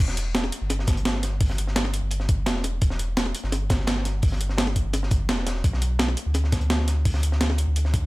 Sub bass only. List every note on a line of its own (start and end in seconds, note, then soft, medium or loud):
0.00 0.51 E1 loud
0.62 2.01 G1 loud
2.03 2.48 G1 loud
2.47 2.80 E1 loud
2.82 3.33 E1 loud
3.44 4.83 G1 loud
4.85 5.30 G1 loud
5.29 5.63 E1 loud
5.64 6.16 B1 loud
6.26 7.66 D2 loud
7.67 8.06 D2 loud